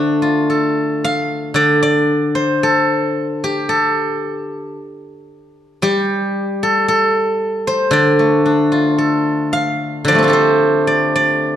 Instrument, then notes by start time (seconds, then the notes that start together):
guzheng
Already playing: D3 G3 A3 D4 A4 C5 D5
0.22 F4
0.50 A4
1.04 F5
1.54 D3 D5
1.83 D5
2.35 C5
2.63 A4
3.44 G4
3.69 A4
5.82 G3 G4
6.63 A4
6.88 A4
7.67 C5
7.91 D3 D5
8.19 A3
8.46 D4
8.72 F4 C#5
8.92 C5
8.98 A4
9.53 F5
10.05 D3 F3 D5
10.12 G3 A3
10.19 C4
10.23 D4 F4
10.28 G4 A4
10.33 C5
10.87 D5
11.16 D5